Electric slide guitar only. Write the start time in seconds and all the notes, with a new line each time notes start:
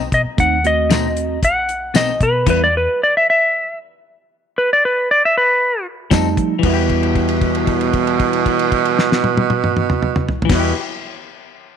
0.14 D#5
0.40 F#5
0.67 D#5
1.45 F#5
1.96 D#5
2.23 B4
2.50 B4
2.64 D5
2.77 B4
3.03 D5
3.17 E5
3.30 E5
4.58 B4
4.73 D5
4.85 B4
5.11 D5
5.25 E5
5.37 B4